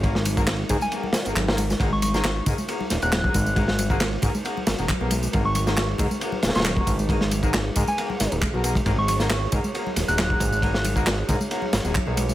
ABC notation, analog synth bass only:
X:1
M:4/4
L:1/16
Q:"Swing 16ths" 1/4=136
K:G#m
V:1 name="Analog synth bass" clef=bass
G,,,4- G,,, z G,, z4 G,,, G,,,3 z | G,,,4- G,,, z G,, z3 D,,, D,,,2 z G,,,2- | G,,,4- G,,, z G,, z3 G,,, D,,, z B,,,2 z | G,,,4- G,,, z G,, z3 D,,, D,,,2 z G,,,2- |
G,,,4- G,,, z G,, z3 G,,, D,,, z B,,,2 z | G,,,4- G,,, z G,, z3 D,,, D,,,2 z G,,,2- | G,,,4- G,,, z G,, z3 G,,, D,,, z B,,,2 z |]